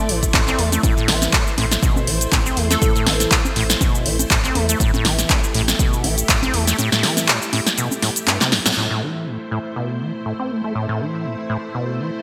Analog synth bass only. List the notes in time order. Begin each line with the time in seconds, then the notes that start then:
0.09 A1
0.34 A1
0.59 E2
1.08 A1
1.58 A1
2.07 A1
2.32 A1
2.57 E2
3.07 A1
3.56 A1
4.06 A1
4.31 A1
4.55 E2
5.05 A1
5.55 A1
6.04 A1
6.29 A1
6.54 E2